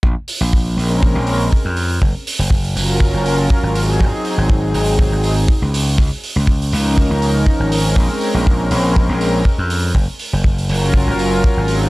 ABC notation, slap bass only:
X:1
M:4/4
L:1/16
Q:"Swing 16ths" 1/4=121
K:Bbm
V:1 name="Slap bass" clef=bass
B,,, z2 B,,,3 B,,,3 B,,,3 z F,,3 | G,,, z2 G,,,3 G,,,3 G,,,3 z A,,,3 | A,,, z2 A,,,3 A,,,3 A,,,3 z D,,3 | D,, z2 D,,3 D,,3 D,,3 z A,,,3 |
B,,, z2 B,,,3 B,,,3 B,,,3 z F,,3 | G,,, z2 G,,,3 G,,,3 G,,,3 z A,,,3 |]